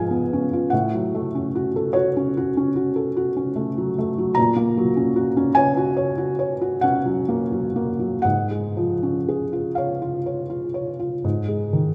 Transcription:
Already playing: G#2 F3 G#3 F5 G#5
0.11 B3
0.33 C#4
0.53 F4
0.70 A2 F#5
0.94 F#3
1.15 A3
1.35 C#4
1.55 F#4
1.76 A4
1.93 F#4 C#5
2.17 C#4
2.37 F#4
2.57 C#4
2.76 F#4
2.96 A4
3.17 F#4
3.37 C#4
3.56 A3
3.78 F#3
3.98 A3
4.18 F#3
4.35 A#2 A#5
4.56 A#3
4.77 F#3
4.97 C#4
5.16 F#4
5.37 C#4
5.55 C#5 G#5
5.77 F#4
5.97 C#5
6.18 F#4
6.39 C#5
6.61 F#4
6.81 C#4 F#5
7.06 F#3
7.28 A#3
7.52 F#3
7.76 A#3
7.99 F#3
8.22 G#2 F#5
8.51 G#3
8.77 F3
9.03 C#4
9.28 G#4
9.53 F4
9.75 C#5 F5
10.02 F4
10.26 C#5
10.50 F4
10.74 C#5
10.99 F4
11.24 G#2
11.48 G#3
11.73 D#3

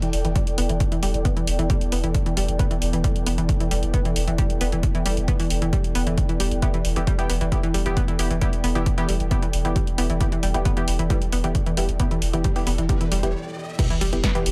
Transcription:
Already playing: E3 B3 E4 A4 D5 G5
0.02 E3, closed hi-hat
0.13 E1, open hi-hat
0.25 E1 E3, closed hi-hat
0.36 G3, kick, closed hi-hat
0.47 closed hi-hat
0.58 E1 B3, open hi-hat
0.69 E1 E3, closed hi-hat
0.80 kick, closed hi-hat
0.92 E3, closed hi-hat
1.03 E1 G3, open hi-hat
1.14 E1, closed hi-hat
1.25 B3, kick, closed hi-hat
1.37 E3, closed hi-hat
1.47 E1, open hi-hat
1.59 E1 E3, closed hi-hat
1.70 G3, kick, closed hi-hat
1.81 closed hi-hat
1.92 E1 B3, open hi-hat
2.04 E1 E3, closed hi-hat
2.15 kick, closed hi-hat
2.26 E3, closed hi-hat
2.37 E1 G3, open hi-hat
2.48 E1, closed hi-hat
2.59 B3, kick, closed hi-hat
2.71 E3, closed hi-hat
2.82 E1, open hi-hat
2.93 E1 E3, closed hi-hat
3.04 G3, kick, closed hi-hat
3.16 closed hi-hat
3.26 E1 B3, open hi-hat
3.38 E1 E3, closed hi-hat
3.49 kick, closed hi-hat
3.60 E3, closed hi-hat
3.71 E1 G3, open hi-hat
3.83 E1, closed hi-hat
3.94 B3, kick, closed hi-hat
4.05 E3, closed hi-hat
4.16 E1, open hi-hat
4.28 E1 E3, closed hi-hat
4.38 G3, kick, closed hi-hat
4.50 closed hi-hat
4.61 E1 B3, open hi-hat
4.72 E1 E3, closed hi-hat
4.83 kick, closed hi-hat
4.95 E3, closed hi-hat
5.06 E1 G3, open hi-hat
5.17 E1, closed hi-hat
5.28 B3, kick, closed hi-hat
5.40 E3, open hi-hat
5.50 E1, open hi-hat
5.62 E1 E3, closed hi-hat
5.73 G3, kick, closed hi-hat
5.84 closed hi-hat
5.95 E1 B3, open hi-hat
6.07 E1 E3, closed hi-hat
6.18 kick, closed hi-hat
6.29 E3, closed hi-hat
6.40 E1 G3, open hi-hat
6.51 E1, closed hi-hat
6.62 B3 E4 G4, kick, closed hi-hat
6.74 E3, closed hi-hat
6.85 E1, open hi-hat
6.96 E1 E3 B3 E4 G4, closed hi-hat
7.07 G3, kick, closed hi-hat
7.19 B3 E4 G4, closed hi-hat
7.29 E1 B3, open hi-hat
7.41 E1 E3, closed hi-hat
7.52 B3 E4 G4, kick, closed hi-hat
7.63 E3, closed hi-hat
7.74 E1 G3, open hi-hat
7.86 E1 B3 E4 G4, closed hi-hat
7.97 B3, kick, closed hi-hat
8.08 E3, closed hi-hat
8.19 E1 B3 E4 G4, open hi-hat
8.30 E1 E3, closed hi-hat
8.41 G3 B3 E4 G4, kick, closed hi-hat
8.53 closed hi-hat
8.64 E1 B3, open hi-hat
8.75 E1 E3 B3 E4 G4, closed hi-hat
8.86 kick, closed hi-hat
8.98 E3 B3 E4 G4, closed hi-hat
9.09 E1 G3, open hi-hat
9.20 E1, closed hi-hat
9.31 B3 E4 G4, kick, closed hi-hat
9.42 E3, closed hi-hat
9.53 E1, open hi-hat
9.65 E1 E3 B3 E4 G4, closed hi-hat
9.76 G3, kick, closed hi-hat
9.87 closed hi-hat
9.98 E1 B3 E4 G4, open hi-hat
10.10 E1 E3, closed hi-hat
10.21 B3 E4 G4, kick, closed hi-hat, riser
10.32 E3, closed hi-hat
10.43 E1 G3, open hi-hat
10.54 E1 B3 E4 G4, closed hi-hat
10.65 B3, kick, closed hi-hat
10.77 E3 B3 E4 G4, closed hi-hat
10.88 E1, open hi-hat
10.99 E1 E3, closed hi-hat
11.10 G3 B3 E4 G4, kick, closed hi-hat
11.22 closed hi-hat
11.32 E1 B3, open hi-hat
11.44 E1 E3 B3 E4 G4, closed hi-hat
11.55 kick, closed hi-hat
11.66 E3, closed hi-hat
11.77 E1 G3 B3 E4 G4, open hi-hat
11.89 E1, closed hi-hat
12.00 B3 E4 G4, kick, closed hi-hat
12.11 E3, closed hi-hat
12.22 E1, open hi-hat
12.33 E1 E3 B3 E4 G4, closed hi-hat
12.44 G3, kick, closed hi-hat
12.56 B3 E4 G4, open hi-hat
12.67 E1 B3, open hi-hat
12.78 E1 E3, closed hi-hat
12.89 B3 E4 G4, kick, closed hi-hat
13.01 E3, closed hi-hat
13.12 E1 G3, open hi-hat
13.23 E1 B3 E4 G4, closed hi-hat
13.79 E3 B3 E4 G4, kick, closed hi-hat, mid tom, crash, sub drop
13.90 E3, closed hi-hat
14.00 E1 G3 A4, open hi-hat
14.13 E1 B3 E4 G4, closed hi-hat
14.17 D5
14.24 B3, kick, snare, closed hi-hat
14.35 E3 B3 E4 G4, closed hi-hat
14.46 E1, open hi-hat

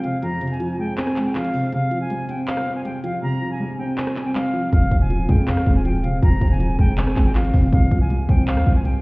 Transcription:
Already playing: F2 C3 F3 G#3 C4
0.03 C3 F5, closed hi-hat
0.22 F2 A#5, closed hi-hat
0.41 C3, closed hi-hat
0.47 G#5, closed hi-hat
0.54 closed hi-hat
0.60 F3, closed hi-hat
0.79 G#3 G5
0.98 C4 G#5, clap, closed hi-hat
1.07 cross-stick
1.16 G#3, clap, closed hi-hat
1.26 G5
1.35 F3 F5, clap, closed hi-hat
1.44 closed hi-hat
1.54 C3, open hi-hat
1.72 C3 F5, closed hi-hat
1.91 F3, closed hi-hat
2.01 G#5
2.10 G3, closed hi-hat
2.29 C4 G5, closed hi-hat
2.48 C5 F5, clap, closed hi-hat
2.57 cross-stick
2.67 C4
2.75 G#5
2.85 G3 G5, closed hi-hat
3.04 F3 F5, closed hi-hat
3.22 C3 A#5
3.42 F3
3.51 G#5
3.60 G3
3.78 C4 G5
3.97 C5 G#5, clap
4.07 cross-stick
4.16 C4, clap
4.25 G5
4.35 G3 F5, clap
4.53 F3
4.73 F1 F2 F5, kick, closed hi-hat
4.91 D#1 C3, kick, closed hi-hat
5.01 G#5
5.10 F3, closed hi-hat
5.29 F2 G#3 G5, kick, closed hi-hat
5.47 C4 F5, clap, closed hi-hat
5.57 cross-stick
5.66 D#1 G#3, kick
5.76 G#5
5.84 F3 G5, closed hi-hat
6.03 C3 F5, closed hi-hat
6.23 F1 F2 A#5, kick, closed hi-hat
6.41 D#1 C3, kick, closed hi-hat
6.48 G#5, closed hi-hat
6.54 closed hi-hat
6.60 F3, closed hi-hat
6.79 F1 G#3 G5, kick
6.98 C4 G#5, clap, closed hi-hat
7.07 cross-stick
7.16 G#1 G#3, kick, clap, closed hi-hat
7.26 G5
7.35 F3 F5, clap, closed hi-hat
7.44 closed hi-hat
7.54 F1 C3, kick, open hi-hat
7.72 C2 C3 F5, kick, closed hi-hat
7.91 C2 F3, kick, closed hi-hat
8.01 G#5
8.10 G3, closed hi-hat
8.28 C2 C4 G5, kick, closed hi-hat
8.47 C5 F5, clap, closed hi-hat
8.57 D#2, cross-stick
8.66 C2 C4, kick
8.75 G#5
8.85 G3 G5, closed hi-hat

